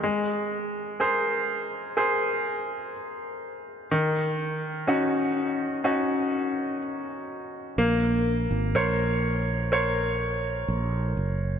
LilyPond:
<<
  \new Staff \with { instrumentName = "Grand piano" } { \time 4/4 \key aes \mixolydian \tempo 4 = 62 aes4 <aes' bes' c''>4 <aes' bes' c''>4 r4 | ees4 <des' ees' ges'>4 <des' ees' ges'>4 r4 | bes4 <bes' c'' des''>4 <bes' c'' des''>4 r4 | }
  \new Staff \with { instrumentName = "Fretless electric bass" } { \clef bass \time 4/4 \key aes \mixolydian r1 | r1 | bes,,8. aes,,16 bes,,2 bes,,8 ges,,8 | }
>>